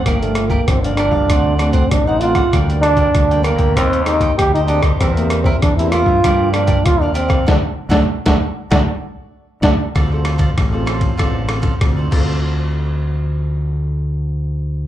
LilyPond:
<<
  \new Staff \with { instrumentName = "Cavaquinho" } { \time 4/4 \key g \minor \tempo 4 = 97 <g' bes' d'' f''>8. <g' bes' d'' f''>16 r16 <bes' d'' f''>16 <g' bes' d'' f''>16 <bes' d'' f''>16 <d' c'' d'' fis''>8 <d' c'' d'' fis''>16 <d' c'' d'' fis''>16 r16 <c'' d'' fis''>16 <d' c'' d'' fis''>16 <c'' d'' fis''>16 | <d' bes' d'' g''>8. <d' bes' d'' g''>16 r16 <bes' d'' g''>16 <d' bes' d'' g''>16 <bes' d'' g''>16 <ees' g' c'' ees''>8 <ees' g' c'' ees''>16 <ees' g' c'' ees''>16 r16 <g' c'' ees''>16 <ees' g' c'' ees''>16 <g' c'' ees''>16 | <e' bes' c'' e''>8. <e' bes' c'' e''>16 r16 <bes' c'' e''>16 <e' bes' c'' e''>16 <bes' c'' e''>16 <g' bes' d'' f''>8 <g' bes' d'' f''>16 <g' bes' d'' f''>16 r16 <bes' d'' f''>16 <g' bes' d'' f''>16 <bes' d'' f''>16 | <fis' a' d''>16 r8 <fis' a' d''>16 r16 <fis' a' d''>16 r8 <fis' a' d''>16 r4 r16 <fis' a' d''>16 r16 |
\key d \minor <f' a' c'' d''>16 <a' c'' d''>16 <f' a' c'' d''>16 <f' a' c'' d''>16 r16 <a' c'' d''>16 <f' a' c'' d''>8 <f' a' c'' d''>8 <f' a' c'' d''>16 <f' a' c'' d''>16 r16 <a' c'' d''>16 <f' a' c'' d''>8~ | <f' a' c'' d''>1 | }
  \new Staff \with { instrumentName = "Trombone" } { \time 4/4 \key g \minor bes16 a8 bes16 c'16 d'16 d'4 d'16 c'16 d'16 ees'16 f'8 | r8 d'4 bes8 c'8 ees'8 g'16 ees'16 d'8 | c'16 bes8 c'16 d'16 e'16 f'4 d'8 f'16 d'16 c'8 | d'16 r8 d'16 r16 d'16 r8 d'16 r4 r16 d'16 r16 |
\key d \minor r1 | r1 | }
  \new Staff \with { instrumentName = "Nylon-string guitar" } { \time 4/4 \key g \minor << { <f bes d'>16 <f d'>4 <f bes d'>8. <a c' fis'>16 r16 <a c' fis'>4 <a c' fis'>16 r16 | <g bes d'>16 <g bes d'>4 <g bes d'>8. <bes c' g'>16 r16 <bes c' g'>8. r16 <bes c' g'>16 r16 | <bes c' g'>16 <bes c' g'>4 <bes c' g'>16 <bes c' g'>16 r16 <f bes d'>16 r16 <f bes d'>8. r16 <f bes d'>8 | <fis a d'>16 r8 <fis a d'>16 r16 <fis a d'>16 r8 <fis a d'>16 r4 r16 <fis a d'>16 r16 |
\key d \minor <c' f' a'>16 <c' f' a'>4 <c' f' a'>8. <c' f' a'>16 r16 <c' f' a'>16 r16 <c' f' a'>8 <d c' f' a'>8~ | <d c' f' a'>1 | } \\ { g,4 d4 d4 a,4 | d4 d4 ees4 bes,4 | e4 e4 g,4 d4 | r1 |
d4 a,4 d4 a,8 r8 | r1 | } >> }
  \new Staff \with { instrumentName = "Fingered electric bass" } { \clef bass \time 4/4 \key g \minor g,,4 g,,8. c,16 d,4 a,,4 | d,4 d,8. d,16 ees,4 d,4 | e,4 e,8. g,16 g,4 ees,4 | d,16 r8 d,16 r16 d,16 r8 d,16 r4 r16 d,16 r16 |
\key d \minor d,4 a,,4 a,,4 d,8 d,8~ | d,1 | }
  \new DrumStaff \with { instrumentName = "Drums" } \drummode { \time 4/4 <hh bd ss>16 hh16 <hh ss>16 bd16 <hh bd ss>16 hh16 <hh ss>16 bd16 <hh bd ss>8 <hh ss>16 <hh bd>16 <hh bd ss>8 hh16 <hh bd ss>16 | <hh bd ss>16 hh16 <hh ss>16 <hh bd>16 <hh bd ss>16 hh16 <hh ss>16 <hh bd>16 <hh bd ss>16 hh16 <hh ss>16 <hh bd>16 <hh bd ss>16 hh16 hh16 <hh bd ss>16 | <hh bd ss>16 hh16 <hh ss>16 bd16 <hh bd ss>16 hh16 <hh ss>16 bd16 <hh bd ss>8 <hh ss>16 <hh bd>16 <hh bd ss>8 hh16 <hh bd ss>16 | <bd sn>8. <bd sn>16 r16 <bd sn>8. <bd sn>4 r8 <bd sn>8 |
<bd cymr ss>8 <cymr ss>16 <bd cymr>16 <bd cymr ss>8 <cymr ss>16 <bd cymr>16 <bd cymr ss>8 <cymr ss>16 <bd cymr>16 <bd cymr ss>8 <cymc bd>8 | r4 r4 r4 r4 | }
>>